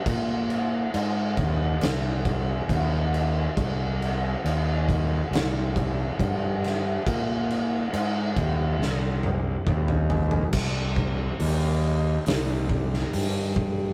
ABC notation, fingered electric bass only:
X:1
M:4/4
L:1/8
Q:1/4=69
K:Cm
V:1 name="Fingered electric bass" clef=bass
B,,2 A,, E,, C,,2 E,,2 | C,,2 E,,2 C,,2 G,,2 | B,,2 A,, E,, C,,2 E,,2 | C,,2 E,,2 C,,2 G,,2 |]